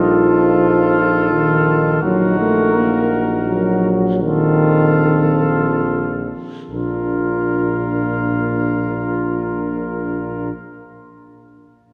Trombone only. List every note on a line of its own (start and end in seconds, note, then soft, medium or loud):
0.00 1.32 F3 medium
1.32 2.01 D#3 medium
2.03 2.38 F#3 medium
2.39 2.77 A3 soft
2.76 3.23 A#3 medium
3.48 4.19 F#3 medium
4.23 5.81 D#3 medium
6.71 10.52 A#2 soft